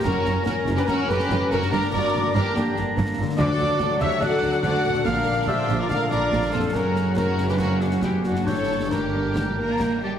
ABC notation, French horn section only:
X:1
M:4/4
L:1/16
Q:1/4=143
K:F#phr
V:1 name="French horn section"
^A4 A3 B A2 B4 A2 | _B2 d4 B2 G2 z6 | d6 e2 F4 F4 | =f4 e3 d f2 d4 A2 |
^A4 A3 B A2 F2 G2 F2 | c4 _B6 B4 G2 |]